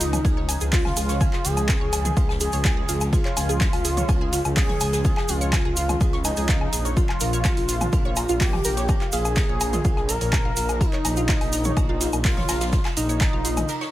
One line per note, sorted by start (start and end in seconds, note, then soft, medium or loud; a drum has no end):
0.00 0.19 C#2 medium
0.00 13.91 F2 medium
0.00 13.91 F3 medium
0.00 0.63 D#4 loud
0.00 0.08 F4 medium
0.00 0.08 F5 medium
0.00 open hi-hat loud
0.00 ride medium
0.00 cabasa medium
0.13 closed hi-hat soft
0.13 mid tom medium
0.13 ride soft
0.13 cabasa medium
0.13 low woodblock soft
0.24 0.55 C#2 medium
0.24 0.32 G#4 medium
0.24 0.32 G#5 medium
0.24 kick loud
0.24 closed hi-hat soft
0.24 ride medium
0.24 cabasa soft
0.37 0.47 C#5 medium
0.37 0.47 C#6 medium
0.49 0.53 G#5 medium
0.49 0.53 G#6 medium
0.49 open hi-hat loud
0.49 ride medium
0.49 cabasa medium
0.49 low woodblock soft
0.61 0.91 C#2 medium
0.61 0.65 G#4 medium
0.61 0.65 G#5 medium
0.61 closed hi-hat soft
0.61 cabasa medium
0.73 0.80 F4 medium
0.73 1.46 F4 loud
0.73 0.80 F5 medium
0.73 kick loud
0.73 snare loud
0.73 clap loud
0.73 closed hi-hat soft
0.73 open hi-hat medium
0.73 cabasa soft
0.85 snare soft
0.85 mid tom medium
0.85 low woodblock soft
0.97 1.27 C#2 medium
0.97 1.04 G#4 medium
0.97 1.04 G#5 medium
0.97 open hi-hat loud
0.97 ride medium
0.97 cabasa medium
1.09 1.19 C#5 medium
1.09 1.19 C#6 medium
1.09 snare medium
1.09 closed hi-hat soft
1.09 cabasa medium
1.20 1.25 G#5 medium
1.20 1.25 G#6 medium
1.20 kick loud
1.20 closed hi-hat soft
1.20 ride medium
1.20 cabasa soft
1.20 low woodblock medium
1.33 1.37 G#4 medium
1.33 1.37 G#5 medium
1.33 snare soft
1.33 clap soft
1.45 1.75 C#2 loud
1.45 1.52 F4 medium
1.45 2.31 G#4 loud
1.45 1.52 F5 medium
1.45 open hi-hat loud
1.45 ride medium
1.45 cabasa medium
1.57 closed hi-hat soft
1.57 cabasa medium
1.57 low woodblock medium
1.69 1.76 G#4 medium
1.69 1.76 G#5 medium
1.69 kick loud
1.69 snare loud
1.69 clap loud
1.69 closed hi-hat soft
1.69 cabasa soft
1.81 2.11 C#2 medium
1.81 1.91 C#5 medium
1.81 1.91 C#6 medium
1.93 1.97 G#5 medium
1.93 1.97 G#6 medium
1.93 open hi-hat loud
1.93 ride medium
1.93 cabasa medium
1.93 low woodblock medium
2.05 2.09 G#4 medium
2.05 2.09 G#5 medium
2.05 closed hi-hat soft
2.05 mid tom medium
2.05 ride soft
2.05 cabasa medium
2.17 2.47 C#2 medium
2.17 2.24 F4 medium
2.17 2.24 F5 medium
2.17 kick loud
2.17 closed hi-hat soft
2.17 ride medium
2.17 cabasa soft
2.29 snare medium
2.29 low woodblock medium
2.40 2.48 G#4 medium
2.40 3.03 G#4 medium
2.40 2.48 G#5 medium
2.40 open hi-hat loud
2.40 ride medium
2.40 cabasa medium
2.52 2.83 C#2 medium
2.52 2.63 C#5 medium
2.52 2.63 C#6 medium
2.52 open hi-hat medium
2.52 cabasa medium
2.65 2.69 G#5 medium
2.65 2.69 G#6 medium
2.65 kick loud
2.65 snare loud
2.65 clap loud
2.65 closed hi-hat soft
2.65 ride medium
2.65 cabasa soft
2.65 low woodblock medium
2.77 2.81 G#4 medium
2.77 2.81 G#5 medium
2.88 3.19 C#2 medium
2.88 2.96 F4 medium
2.88 2.96 F5 medium
2.88 open hi-hat loud
2.88 ride medium
2.88 cabasa medium
3.01 closed hi-hat soft
3.01 ride soft
3.01 cabasa medium
3.01 low woodblock medium
3.12 4.47 F4 loud
3.12 3.20 G#4 medium
3.12 3.20 G#5 medium
3.12 kick loud
3.12 closed hi-hat soft
3.12 ride medium
3.12 cabasa soft
3.25 3.35 C#5 medium
3.25 3.35 C#6 medium
3.25 clap soft
3.36 3.67 C#2 loud
3.36 3.41 G#5 medium
3.36 3.41 G#6 medium
3.36 snare soft
3.36 open hi-hat loud
3.36 ride medium
3.36 cabasa loud
3.36 low woodblock medium
3.49 3.53 G#4 medium
3.49 3.53 G#5 medium
3.49 closed hi-hat soft
3.49 cabasa medium
3.60 3.68 F4 medium
3.60 3.68 F5 medium
3.60 kick loud
3.60 snare loud
3.60 clap loud
3.60 closed hi-hat soft
3.60 ride medium
3.60 cabasa soft
3.73 4.03 C#2 medium
3.73 open hi-hat medium
3.73 low woodblock medium
3.85 3.92 G#4 medium
3.85 3.92 G#5 medium
3.85 open hi-hat loud
3.85 ride medium
3.85 cabasa loud
3.97 4.07 C#5 medium
3.97 4.07 C#6 medium
3.97 closed hi-hat soft
3.97 mid tom medium
3.97 ride soft
3.97 cabasa medium
4.09 4.39 C#2 medium
4.09 4.13 G#5 medium
4.09 4.13 G#6 medium
4.09 kick loud
4.09 closed hi-hat soft
4.09 ride medium
4.09 cabasa soft
4.09 low woodblock medium
4.21 4.25 G#4 medium
4.21 4.25 G#5 medium
4.33 4.40 F4 medium
4.33 4.40 F5 medium
4.33 open hi-hat loud
4.33 ride medium
4.33 cabasa loud
4.45 4.75 C#2 medium
4.45 closed hi-hat soft
4.45 cabasa soft
4.45 low woodblock medium
4.56 4.64 G#4 medium
4.56 5.30 G#4 loud
4.56 4.64 G#5 medium
4.56 kick loud
4.56 snare loud
4.56 clap loud
4.56 closed hi-hat soft
4.56 open hi-hat medium
4.56 cabasa soft
4.69 4.79 C#5 medium
4.69 4.79 C#6 medium
4.69 snare soft
4.69 mid tom medium
4.80 5.11 C#2 medium
4.80 4.85 G#5 medium
4.80 4.85 G#6 medium
4.80 open hi-hat loud
4.80 ride medium
4.80 cabasa loud
4.80 low woodblock medium
4.93 4.97 G#4 medium
4.93 4.97 G#5 medium
4.93 snare medium
4.93 closed hi-hat soft
4.93 cabasa medium
5.05 5.12 F4 medium
5.05 5.12 F5 medium
5.05 kick loud
5.05 closed hi-hat soft
5.05 ride medium
5.05 cabasa soft
5.17 snare soft
5.17 clap soft
5.17 low woodblock medium
5.28 5.59 C#2 loud
5.28 6.15 F4 loud
5.28 5.36 G#4 medium
5.28 5.36 G#5 medium
5.28 open hi-hat loud
5.28 ride medium
5.28 cabasa medium
5.41 5.51 C#5 medium
5.41 5.51 C#6 medium
5.41 closed hi-hat soft
5.41 cabasa medium
5.53 5.57 G#5 medium
5.53 5.57 G#6 medium
5.53 kick loud
5.53 snare loud
5.53 clap loud
5.53 closed hi-hat soft
5.53 ride medium
5.53 cabasa soft
5.53 low woodblock medium
5.65 5.95 C#2 medium
5.65 5.69 G#4 medium
5.65 5.69 G#5 medium
5.77 5.84 F4 medium
5.77 5.84 F5 medium
5.77 open hi-hat loud
5.77 ride medium
5.77 cabasa loud
5.89 closed hi-hat soft
5.89 mid tom medium
5.89 ride soft
5.89 cabasa medium
5.89 low woodblock medium
6.01 6.08 G#4 medium
6.01 6.08 G#5 medium
6.01 kick loud
6.01 closed hi-hat soft
6.01 ride medium
6.01 cabasa soft
6.13 6.23 C#5 medium
6.13 6.23 C#6 medium
6.13 snare soft
6.25 6.87 D#4 loud
6.25 6.29 G#5 medium
6.25 6.29 G#6 medium
6.25 open hi-hat loud
6.25 ride medium
6.25 cabasa loud
6.25 low woodblock medium
6.37 6.67 C#2 medium
6.37 6.41 G#4 medium
6.37 6.41 G#5 medium
6.37 open hi-hat medium
6.37 cabasa medium
6.48 6.56 F4 medium
6.48 6.56 F5 medium
6.48 kick loud
6.48 snare loud
6.48 clap loud
6.48 closed hi-hat soft
6.48 cabasa soft
6.61 low woodblock medium
6.73 7.03 A#1 medium
6.73 6.80 G#4 medium
6.73 6.80 G#5 medium
6.73 open hi-hat loud
6.73 ride medium
6.73 cabasa loud
6.85 6.95 C#5 medium
6.85 6.95 C#6 medium
6.85 closed hi-hat soft
6.85 ride soft
6.85 cabasa medium
6.96 8.42 F4 loud
6.96 7.04 F4 medium
6.96 7.04 F5 medium
6.96 kick loud
6.96 closed hi-hat soft
6.96 ride medium
6.96 cabasa soft
7.09 clap soft
7.09 low woodblock medium
7.20 7.51 A#1 loud
7.20 7.28 A#4 medium
7.20 7.28 A#5 medium
7.20 snare soft
7.20 open hi-hat loud
7.20 ride medium
7.20 cabasa loud
7.33 7.43 C#5 medium
7.33 7.43 C#6 medium
7.33 closed hi-hat soft
7.33 cabasa medium
7.44 7.49 A#5 medium
7.44 7.49 A#6 medium
7.44 kick loud
7.44 snare loud
7.44 clap loud
7.44 closed hi-hat soft
7.44 ride medium
7.44 cabasa soft
7.44 low woodblock medium
7.57 7.87 A#1 medium
7.57 7.61 F4 medium
7.57 7.61 F5 medium
7.57 open hi-hat medium
7.68 7.76 F4 medium
7.68 7.76 F5 medium
7.68 open hi-hat loud
7.68 ride medium
7.68 cabasa loud
7.81 closed hi-hat soft
7.81 mid tom medium
7.81 ride soft
7.81 cabasa medium
7.81 low woodblock medium
7.93 8.23 A#1 medium
7.93 8.00 A#4 medium
7.93 8.00 A#5 medium
7.93 kick loud
7.93 closed hi-hat soft
7.93 ride medium
7.93 cabasa soft
8.05 8.15 C#5 medium
8.05 8.15 C#6 medium
8.16 8.21 A#5 medium
8.16 8.21 A#6 medium
8.16 open hi-hat loud
8.16 ride medium
8.16 cabasa medium
8.16 low woodblock medium
8.29 8.59 A#1 medium
8.29 8.33 F4 medium
8.29 8.33 F5 medium
8.29 closed hi-hat soft
8.29 cabasa medium
8.41 8.48 F4 medium
8.41 9.04 G4 loud
8.41 8.48 F5 medium
8.41 kick loud
8.41 snare loud
8.41 clap loud
8.41 closed hi-hat soft
8.41 open hi-hat medium
8.41 cabasa soft
8.53 snare soft
8.53 mid tom medium
8.53 low woodblock medium
8.64 8.95 A#1 medium
8.64 8.72 A#4 medium
8.64 8.72 A#5 medium
8.64 open hi-hat loud
8.64 ride medium
8.64 cabasa medium
8.77 8.87 C#5 medium
8.77 8.87 C#6 medium
8.77 snare medium
8.77 closed hi-hat soft
8.77 cabasa soft
8.88 8.93 A#5 medium
8.88 8.93 A#6 medium
8.88 kick loud
8.88 closed hi-hat soft
8.88 ride medium
8.88 cabasa soft
8.88 low woodblock medium
9.01 9.05 F4 medium
9.01 9.05 F5 medium
9.01 snare soft
9.01 clap soft
9.12 9.43 A#1 loud
9.12 9.20 F4 medium
9.12 10.10 G#4 loud
9.12 9.20 F5 medium
9.12 open hi-hat loud
9.12 ride medium
9.12 cabasa medium
9.25 closed hi-hat soft
9.25 cabasa medium
9.25 low woodblock medium
9.36 9.44 A#4 medium
9.36 9.44 A#5 medium
9.36 kick loud
9.36 snare loud
9.36 clap loud
9.36 closed hi-hat soft
9.36 ride medium
9.36 cabasa soft
9.49 9.79 A#1 medium
9.49 9.59 C#5 medium
9.49 9.59 C#6 medium
9.61 9.65 A#5 medium
9.61 9.65 A#6 medium
9.61 open hi-hat loud
9.61 ride medium
9.61 cabasa medium
9.61 low woodblock medium
9.73 9.77 F4 medium
9.73 9.77 F5 medium
9.73 closed hi-hat soft
9.73 mid tom loud
9.73 ride soft
9.73 cabasa soft
9.85 10.15 A#1 medium
9.85 9.92 F4 medium
9.85 9.92 F5 medium
9.85 kick loud
9.85 closed hi-hat soft
9.85 ride medium
9.85 cabasa soft
9.97 snare soft
9.97 low woodblock medium
10.09 10.82 A#4 loud
10.09 10.16 A#4 medium
10.09 10.16 A#5 medium
10.09 open hi-hat loud
10.09 ride medium
10.09 cabasa loud
10.21 10.51 A#1 medium
10.21 10.31 C#5 medium
10.21 10.31 C#6 medium
10.21 open hi-hat medium
10.21 cabasa soft
10.32 10.37 A#5 medium
10.32 10.37 A#6 medium
10.32 kick loud
10.32 snare loud
10.32 clap loud
10.32 closed hi-hat soft
10.32 ride medium
10.32 cabasa soft
10.32 low woodblock medium
10.45 10.49 F4 medium
10.45 10.49 F5 medium
10.56 10.87 A#1 medium
10.56 10.64 F4 medium
10.56 10.64 F5 medium
10.56 open hi-hat loud
10.56 ride medium
10.56 cabasa medium
10.69 closed hi-hat soft
10.69 ride soft
10.69 cabasa medium
10.69 low woodblock medium
10.81 12.15 D#4 loud
10.81 10.88 A#4 medium
10.81 10.88 A#5 medium
10.81 kick loud
10.81 closed hi-hat soft
10.81 ride loud
10.81 cabasa soft
10.93 11.03 C#5 medium
10.93 11.03 C#6 medium
10.93 clap soft
11.04 11.35 A#1 loud
11.04 11.09 A#5 medium
11.04 11.09 A#6 medium
11.04 snare soft
11.04 open hi-hat loud
11.04 ride medium
11.04 cabasa loud
11.04 low woodblock medium
11.16 11.21 F4 medium
11.16 11.21 F5 medium
11.16 closed hi-hat soft
11.16 cabasa soft
11.28 11.36 F4 medium
11.28 11.36 F5 medium
11.28 kick loud
11.28 snare loud
11.28 clap loud
11.28 closed hi-hat soft
11.28 ride medium
11.28 cabasa soft
11.41 11.71 A#1 medium
11.41 open hi-hat medium
11.41 low woodblock soft
11.53 11.60 A#4 medium
11.53 11.60 A#5 medium
11.53 open hi-hat loud
11.53 ride medium
11.53 cabasa medium
11.64 11.75 C#5 medium
11.64 11.75 C#6 medium
11.64 closed hi-hat soft
11.64 mid tom loud
11.64 ride soft
11.64 cabasa soft
11.76 12.07 A#1 medium
11.76 11.81 A#5 medium
11.76 11.81 A#6 medium
11.76 kick loud
11.76 closed hi-hat soft
11.76 ride medium
11.76 cabasa soft
11.76 low woodblock medium
11.89 11.93 F4 medium
11.89 11.93 F5 medium
12.00 12.08 F4 medium
12.00 12.08 F5 medium
12.00 open hi-hat loud
12.00 ride medium
12.00 cabasa medium
12.13 12.43 A#1 medium
12.13 closed hi-hat soft
12.13 cabasa soft
12.13 low woodblock medium
12.24 12.87 F4 loud
12.24 12.32 A#4 medium
12.24 12.32 A#5 medium
12.24 kick loud
12.24 snare loud
12.24 clap loud
12.24 closed hi-hat soft
12.24 open hi-hat medium
12.24 cabasa soft
12.37 12.47 C#5 medium
12.37 12.47 C#6 medium
12.37 snare soft
12.37 mid tom medium
12.49 12.79 A#1 medium
12.49 12.53 A#5 medium
12.49 12.53 A#6 medium
12.49 snare loud
12.49 open hi-hat loud
12.49 ride medium
12.49 cabasa loud
12.49 low woodblock medium
12.60 12.65 F4 medium
12.60 12.65 F5 medium
12.60 snare loud
12.60 closed hi-hat soft
12.60 ride medium
12.60 cabasa medium
12.72 12.80 F4 medium
12.72 12.80 F5 medium
12.72 kick loud
12.72 snare loud
12.72 closed hi-hat soft
12.72 ride medium
12.72 cabasa soft
12.85 snare loud
12.85 clap soft
12.85 ride medium
12.85 low woodblock medium
12.97 13.27 A#1 loud
12.97 13.83 D#4 loud
12.97 13.04 A#4 medium
12.97 13.04 A#5 medium
12.97 open hi-hat loud
12.97 ride medium
12.97 cabasa medium
13.09 13.19 C#5 medium
13.09 13.19 C#6 medium
13.09 closed hi-hat soft
13.09 cabasa medium
13.20 13.25 A#5 medium
13.20 13.25 A#6 medium
13.20 kick loud
13.20 snare loud
13.20 clap loud
13.20 closed hi-hat soft
13.20 ride medium
13.20 cabasa soft
13.20 low woodblock soft
13.33 13.63 A#1 medium
13.33 13.37 F4 medium
13.33 13.37 F5 medium
13.45 13.52 F4 medium
13.45 13.52 F5 medium
13.45 open hi-hat loud
13.45 ride medium
13.45 cabasa medium
13.57 closed hi-hat soft
13.57 mid tom medium
13.57 ride medium
13.57 cabasa medium
13.57 low woodblock soft
13.68 13.76 A#4 medium
13.68 13.76 A#5 medium
13.68 closed hi-hat soft
13.68 ride medium
13.68 cabasa soft
13.81 13.91 C#5 medium
13.81 13.91 C#6 medium
13.81 snare medium